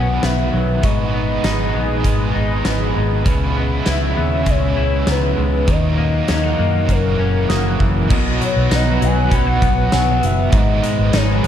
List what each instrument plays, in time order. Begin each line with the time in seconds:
Already playing: fingered electric bass B1, clean electric guitar B2 F#3 B3, overdriven electric guitar D#3 F#3 B3 D#4, analog synth pad B3 B4 F#5, soft synth lead F#5, celesta G#5 B5
0.22 fingered electric bass B1, clean electric guitar B3, soft synth lead E5, snare, closed hi-hat
0.53 fingered electric bass B1, clean electric guitar F#3
0.82 fingered electric bass G#1, overdriven electric guitar G#2 D#3 G#3 B3 D#4, clean electric guitar G#2, analog synth pad G#3 G#4 D#5, soft synth lead D#5, celesta C#6, kick, closed hi-hat
1.12 clean electric guitar B3, overdriven electric guitar B3 D#4
1.17 overdriven electric guitar G#3
1.44 fingered electric bass G#1, clean electric guitar D#4, snare, closed hi-hat
1.74 fingered electric bass A#1, clean electric guitar B3
2.00 overdriven electric guitar D#3
2.04 fingered electric bass G#1, clean electric guitar G#3, overdriven electric guitar G#3, kick, closed hi-hat
2.09 overdriven electric guitar B3 D#4
2.35 fingered electric bass G#1, clean electric guitar D#4
2.65 fingered electric bass G#1, clean electric guitar B3, snare, closed hi-hat
2.95 fingered electric bass G#1, clean electric guitar G#3
3.25 fingered electric bass C#2, overdriven electric guitar C#3 G#3 B3 E4, analog synth pad C#3 C#4 E5, clean electric guitar C#3, kick, closed hi-hat
3.54 clean electric guitar B3, overdriven electric guitar B3 E4
3.60 overdriven electric guitar G#3
3.86 fingered electric bass C#2, clean electric guitar E4, snare, closed hi-hat
3.90 soft synth lead E5
4.17 fingered electric bass D#2, clean electric guitar B3
4.43 fingered electric bass C#2, overdriven electric guitar C#3, clean electric guitar G#3, kick, closed hi-hat
4.47 overdriven electric guitar G#3 B3, soft synth lead C#5
4.54 overdriven electric guitar E4
4.77 fingered electric bass C#2, clean electric guitar E4
5.07 fingered electric bass C#2, clean electric guitar B3, soft synth lead B4, celesta A#5, snare, closed hi-hat
5.37 fingered electric bass C#2, clean electric guitar G#3
5.67 fingered electric bass D#2, overdriven electric guitar D#3 F#3 A#3, clean electric guitar D#3, analog synth pad D#3 D#4 A#4 F#5, soft synth lead D#5, kick, closed hi-hat
5.71 overdriven electric guitar D#4
5.96 clean electric guitar A#3, overdriven electric guitar A#3 D#4
6.02 overdriven electric guitar F#3
6.28 fingered electric bass D#2, clean electric guitar C#4, soft synth lead D#5, snare, closed hi-hat
6.43 clean electric guitar D#4
6.59 fingered electric bass F#2, clean electric guitar A#3
6.85 fingered electric bass F#1, clean electric guitar F#2, overdriven electric guitar C#3, kick, closed hi-hat
6.90 overdriven electric guitar E3 A#3, analog synth pad F#3 E4 F#5, soft synth lead A#4
6.97 overdriven electric guitar C#4
7.19 fingered electric bass F#1, clean electric guitar C#4
7.49 fingered electric bass F#1, clean electric guitar A#3, celesta D#6, snare, closed hi-hat
7.70 celesta F#6
7.80 fingered electric bass F#1, clean electric guitar E3, kick
8.08 fingered electric bass B1, overdriven electric guitar B2 F#3, clean electric guitar B2, analog synth pad B3 B4 F#5, kick, crash
8.13 overdriven electric guitar B3 D#4
8.41 clean electric guitar F#3, soft synth lead C#5, closed hi-hat
8.56 fingered electric bass B1
8.71 fingered electric bass B1, clean electric guitar D#4, soft synth lead D#5, celesta A#5, snare, closed hi-hat, tambourine
9.01 fingered electric bass B1, clean electric guitar F#3, soft synth lead G#5, closed hi-hat
9.29 fingered electric bass B1, overdriven electric guitar B2 F#3, clean electric guitar C#4, celesta B5, kick, closed hi-hat
9.34 overdriven electric guitar B3, soft synth lead F#5
9.47 clean electric guitar D#4
9.62 fingered electric bass B1, clean electric guitar B3, kick, closed hi-hat
9.92 fingered electric bass B1, clean electric guitar F#3, celesta G#5, snare, closed hi-hat, tambourine
10.23 fingered electric bass F#1, soft synth lead E5, closed hi-hat
10.50 fingered electric bass G#1, overdriven electric guitar G#2 D#3, clean electric guitar G#2, analog synth pad G#3 G#4 B4, celesta A#5, kick, closed hi-hat
10.54 overdriven electric guitar G#3 B3 D#4, soft synth lead D#5
10.83 clean electric guitar G#3, closed hi-hat
10.99 fingered electric bass G#1
11.13 fingered electric bass G#1, clean electric guitar D#4, soft synth lead C#5, snare, closed hi-hat, tambourine
11.44 fingered electric bass G#1, clean electric guitar G#3, closed hi-hat